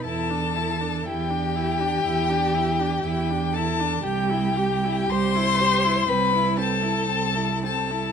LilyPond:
<<
  \new Staff \with { instrumentName = "Violin" } { \time 4/4 \key e \minor \tempo 4 = 60 a''4 g''2~ g''8 a''8 | g''4 c'''4 b''8 a''4 a''8 | }
  \new Staff \with { instrumentName = "Violin" } { \time 4/4 \key e \minor a'4 g'2~ g'8 a'8 | g'4 c''4 b'8 a'4 a'8 | }
  \new Staff \with { instrumentName = "Viola" } { \time 4/4 \key e \minor e'16 d'16 e'16 d'16 e'16 d'16 e'16 d'16 e'16 d'16 e'16 d'16 e'16 d'16 e'16 d'16 | g'16 e'16 g'16 e'16 g'16 e'16 g'16 e'16 c'16 e'16 c'16 e'16 c'16 e'16 c'16 e'16 | }
  \new Staff \with { instrumentName = "Cello" } { \clef bass \time 4/4 \key e \minor e,4 e,4 e,4 e,4 | c,4 c,4 c,4 c,4 | }
>>